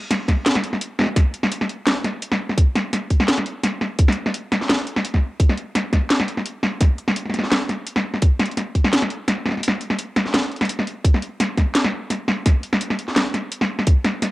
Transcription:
0.11 snare, closed hi-hat
0.28 kick, snare, closed hi-hat
0.46 snare, closed hi-hat
0.55 snare
0.64 closed hi-hat
0.73 snare
0.81 closed hi-hat
0.99 snare
1.01 snare
1.04 snare
1.06 snare
1.16 kick, snare, closed hi-hat
1.34 closed hi-hat
1.43 snare
1.52 closed hi-hat
1.61 snare
1.69 closed hi-hat
1.87 snare, closed hi-hat
2.04 snare, closed hi-hat
2.22 closed hi-hat
2.32 snare
2.49 snare
2.57 kick, closed hi-hat
2.75 snare, closed hi-hat
2.93 snare, closed hi-hat
3.10 kick, closed hi-hat
3.20 snare
3.28 snare, closed hi-hat
3.38 snare
3.46 closed hi-hat
3.63 snare, closed hi-hat
3.81 snare
3.99 kick, closed hi-hat
4.08 snare
4.12 closed hi-hat
4.26 snare
4.34 closed hi-hat
4.52 snare, closed hi-hat
4.61 snare
4.70 snare, closed hi-hat
4.87 closed hi-hat
4.96 snare
5.05 closed hi-hat
5.14 kick, snare
5.40 kick, closed hi-hat
5.49 snare
5.58 closed hi-hat
5.75 snare, closed hi-hat
5.93 kick, snare, closed hi-hat
6.10 snare, closed hi-hat
6.20 snare
6.28 closed hi-hat
6.37 snare
6.46 closed hi-hat
6.63 snare
6.81 kick, snare, closed hi-hat
6.98 closed hi-hat
7.08 snare
7.16 closed hi-hat
7.25 snare
7.30 snare
7.34 snare, closed hi-hat
7.39 snare
7.44 snare
7.52 snare, closed hi-hat
7.69 snare, closed hi-hat
7.87 closed hi-hat
7.96 snare
8.14 snare
8.22 kick, closed hi-hat
8.40 snare, closed hi-hat
8.46 closed hi-hat
8.51 closed hi-hat
8.57 snare, closed hi-hat
8.75 kick, closed hi-hat
8.85 snare
8.93 snare, closed hi-hat
9.02 snare
9.10 closed hi-hat
9.28 snare, closed hi-hat
9.46 snare
9.49 snare
9.51 snare
9.57 snare
9.60 snare, closed hi-hat
9.68 snare
9.81 closed hi-hat
9.90 snare
9.99 closed hi-hat
10.16 snare, closed hi-hat
10.26 snare
10.34 snare, closed hi-hat
10.52 closed hi-hat
10.56 closed hi-hat
10.61 snare, closed hi-hat
10.65 closed hi-hat
10.69 closed hi-hat
10.79 snare
10.87 closed hi-hat
11.05 kick, closed hi-hat
11.14 snare
11.22 closed hi-hat
11.40 snare, closed hi-hat
11.58 kick, snare, closed hi-hat
11.75 snare, closed hi-hat
11.85 snare
12.10 snare, closed hi-hat
12.28 snare
12.46 kick, snare, closed hi-hat
12.63 closed hi-hat
12.73 snare
12.81 closed hi-hat
12.90 snare
12.99 closed hi-hat
13.08 snare
13.16 snare, closed hi-hat
13.34 snare, closed hi-hat
13.52 closed hi-hat
13.61 snare
13.79 snare
13.87 kick, closed hi-hat
14.05 snare, closed hi-hat
14.22 snare, closed hi-hat

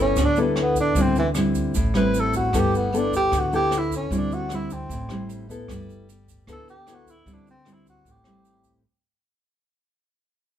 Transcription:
Already playing: G1 G3 B3 E4 A4
0.02 C#4
0.16 D2 D3, kick, cross-stick, closed hi-hat, shaker
0.24 D4
0.36 B3 E4 A4, closed hi-hat, shaker
0.41 G3
0.56 cross-stick, closed hi-hat
0.62 B3
0.75 kick, closed hi-hat, shaker
0.81 D4
0.95 D2 D3 G3 C4 E4, kick, closed hi-hat, shaker
1.02 C4
1.15 E3, closed hi-hat, shaker
1.35 G3 C4 E4, cross-stick, closed hi-hat, shaker
1.55 kick, closed hi-hat, shaker
1.75 A1 A2, kick, closed hi-hat, shaker
1.94 G3 C4 E4 B4, cross-stick, closed hi-hat, shaker
2.14 closed hi-hat, shaker
2.20 A4
2.33 F#4, kick, closed hi-hat, shaker
2.53 G1 G3 B3 E4 A4, kick, cross-stick, closed hi-hat, shaker
2.58 G4
2.73 B3, closed hi-hat, shaker
2.92 B3 E4 A4, closed hi-hat, shaker
2.98 D4
3.12 kick, closed hi-hat, shaker
3.16 G4
3.32 D2 D3, kick, cross-stick, closed hi-hat, shaker
3.38 F#4
3.51 B3 E4 G4 A4, closed hi-hat, shaker
3.71 cross-stick, closed hi-hat, shaker
3.78 E4
3.91 kick, closed hi-hat, shaker
3.96 C#4
4.10 D2 D3 G3 C4 E4, kick, closed hi-hat, shaker
4.18 D4
4.30 F#4, closed hi-hat, shaker
4.49 G3 C4 E4, cross-stick, closed hi-hat, shaker
4.56 E4
4.70 C4, kick, closed hi-hat, shaker
4.89 A1 A2, kick, closed hi-hat, shaker
5.09 G3 C4 E4, cross-stick, closed hi-hat, shaker
5.29 closed hi-hat, shaker
5.48 B3 E4 A4, kick, closed hi-hat, shaker
5.68 G1 G3, kick, cross-stick, closed hi-hat, shaker
5.89 closed hi-hat, shaker
6.09 closed hi-hat, shaker
6.28 kick, closed hi-hat, shaker
6.47 D2 D3 B3 E4 A4, kick, cross-stick, closed hi-hat, shaker
6.52 A4
6.68 G4, closed hi-hat, shaker
6.87 B3 E4 A4, cross-stick, closed hi-hat, shaker
6.94 F#4
7.06 kick, closed hi-hat, shaker
7.11 E4
7.26 D2 D3 G3 C4 E4, kick, closed hi-hat, shaker
7.33 D4
7.45 closed hi-hat, shaker
7.51 C4
7.65 G3 C4 E4, cross-stick, closed hi-hat, shaker
7.73 E4
7.85 kick, closed hi-hat, shaker
7.90 F#4
8.05 A1 A2, kick, closed hi-hat, shaker
8.11 G4
8.24 G3 C4 E4, cross-stick, closed hi-hat, shaker
8.45 closed hi-hat, shaker
8.64 kick, closed hi-hat, shaker

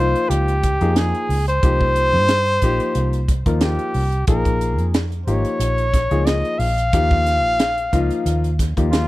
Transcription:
Already playing: C2 C5
0.00 F3 A#3 D#4 F4
0.16 closed hi-hat
0.30 C#2 G4, closed hi-hat
0.48 closed hi-hat
0.63 kick, closed hi-hat
0.81 F2 F3 A#3 D#4 G#4, closed hi-hat
0.96 G#4, snare, closed hi-hat
1.15 closed hi-hat
1.29 C#2, open hi-hat
1.48 C5, closed hi-hat
1.63 C2 F3 A#3 D#4 G4, kick, closed hi-hat
1.81 kick
1.96 closed hi-hat
2.13 G2, snare
2.28 snare, closed hi-hat
2.46 closed hi-hat
2.62 A#1 F3 A#3 D#4 G4, kick, closed hi-hat
2.80 closed hi-hat
2.95 C2, closed hi-hat
3.13 closed hi-hat
3.28 kick, closed hi-hat
3.46 D#2 F3 A#3 D#4 A#4, kick, closed hi-hat
3.61 G4, snare, closed hi-hat
3.79 closed hi-hat
3.94 C2, open hi-hat
4.12 closed hi-hat
4.27 A#1 F3 A#3 D#4 G#4 A#4, kick, closed hi-hat
4.45 kick, closed hi-hat
4.61 closed hi-hat
4.78 F2, closed hi-hat
4.94 snare, closed hi-hat
5.12 closed hi-hat
5.26 G#1 F3 A#3 D#4 G4 C#5, closed hi-hat
5.45 closed hi-hat
5.59 A#1, closed hi-hat
5.78 closed hi-hat
5.94 kick, snare, closed hi-hat
6.11 C#2 F3 A#3 D#4 G#4, closed hi-hat
6.26 D#5, snare, closed hi-hat
6.45 closed hi-hat
6.59 A#1 F5, open hi-hat
6.78 closed hi-hat
6.93 D#2 F3 A#3 D#4 G4, kick, closed hi-hat
7.11 kick
7.27 snare, closed hi-hat
7.44 A#1
7.59 snare, closed hi-hat
7.78 closed hi-hat
7.93 C#2 F3 A#3 D#4 F4, kick, closed hi-hat
8.11 closed hi-hat
8.26 D#2, closed hi-hat
8.44 closed hi-hat
8.59 kick, snare, closed hi-hat
8.77 D#2 F3 A#3 D#4 G4, kick, closed hi-hat
8.91 F4, snare, closed hi-hat

